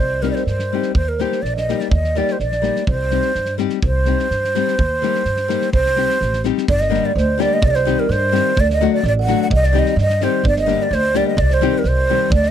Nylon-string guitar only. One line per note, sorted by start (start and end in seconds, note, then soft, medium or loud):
0.22 0.42 G3 medium
0.22 0.42 C4 medium
0.22 0.43 D#4 soft
0.22 0.43 G4 medium
0.73 0.91 G3 medium
0.73 0.91 C4 soft
0.73 0.92 D#4 soft
0.73 0.92 G4 medium
1.19 1.39 G3 soft
1.19 1.39 A#3 medium
1.19 1.39 D#4 soft
1.19 1.39 G4 medium
1.69 1.87 G3 medium
1.69 1.87 A#3 soft
1.69 1.88 D#4 medium
1.69 1.88 G4 medium
2.15 2.35 G3 medium
2.15 2.35 A#3 medium
2.15 2.35 D#4 soft
2.15 2.36 G4 medium
2.62 2.82 G3 medium
2.62 2.82 A#3 soft
2.62 2.82 D#4 soft
2.62 2.83 G4 soft
3.11 3.30 G3 soft
3.11 3.31 C4 medium
3.11 3.31 D#4 medium
3.11 3.31 G4 medium
3.58 3.78 G3 medium
3.58 3.78 C4 medium
3.58 3.78 D#4 medium
3.58 3.79 G4 medium
4.06 4.26 G3 medium
4.06 4.26 C4 soft
4.06 4.26 D#4 soft
4.06 4.27 G4 medium
4.55 4.74 G3 medium
4.55 4.74 C4 medium
4.55 4.75 D#4 medium
4.55 4.75 G4 medium
5.02 5.21 G3 medium
5.02 5.22 A#3 medium
5.02 5.22 D#4 medium
5.02 5.22 G4 medium
5.48 5.68 G3 medium
5.48 5.68 A#3 medium
5.48 5.68 D#4 medium
5.48 5.69 G4 medium
5.96 6.16 G3 medium
5.96 6.16 C4 medium
5.96 6.17 D#4 medium
5.96 6.17 G4 medium
6.44 6.64 G3 medium
6.44 6.64 C4 medium
6.44 6.64 D#4 medium
6.44 6.65 G4 medium
6.90 7.10 D3 medium
6.90 7.11 G3 medium
6.90 7.10 A#3 medium
6.90 7.11 D4 medium
6.90 7.11 G4 medium
7.38 7.58 D3 medium
7.38 7.58 G3 medium
7.38 7.58 A#3 medium
7.38 7.59 D4 medium
7.38 7.59 G4 medium
7.85 8.05 D#3 medium
7.85 8.06 G3 medium
7.85 8.06 C4 medium
7.85 8.06 D#4 medium
7.85 8.06 G4 medium
8.32 8.52 D#3 medium
8.32 8.52 G3 medium
8.32 8.52 C4 medium
8.32 8.53 D#4 medium
8.32 8.52 G4 medium
8.81 9.00 D3 medium
8.81 9.00 F#3 medium
8.81 9.00 A3 medium
8.81 9.00 D4 medium
8.81 9.01 F#4 medium
9.27 9.47 D3 medium
9.27 9.47 F#3 medium
9.27 9.47 A3 medium
9.27 9.47 D4 medium
9.27 9.47 F#4 medium
9.73 9.93 D#3 medium
9.73 9.93 G3 medium
9.73 9.93 C4 medium
9.73 9.94 D#4 medium
9.73 9.94 G4 medium
10.21 10.41 D#3 medium
10.21 10.41 G3 medium
10.21 10.41 C4 medium
10.21 10.41 D#4 medium
10.21 10.41 G4 medium
10.66 10.86 D3 medium
10.66 10.87 G3 medium
10.66 10.87 A#3 medium
10.66 10.87 D4 medium
10.66 10.88 G4 medium
11.14 11.34 D3 medium
11.14 11.34 G3 medium
11.14 11.34 A#3 medium
11.14 11.34 D4 medium
11.14 11.35 G4 medium
11.61 11.81 D#3 medium
11.61 11.81 G3 medium
11.61 11.81 C4 medium
11.61 11.81 D#4 medium
11.61 11.82 G4 medium
12.09 12.28 D#3 medium
12.09 12.28 G3 medium
12.09 12.28 C4 medium
12.09 12.28 D#4 medium
12.09 12.29 G4 medium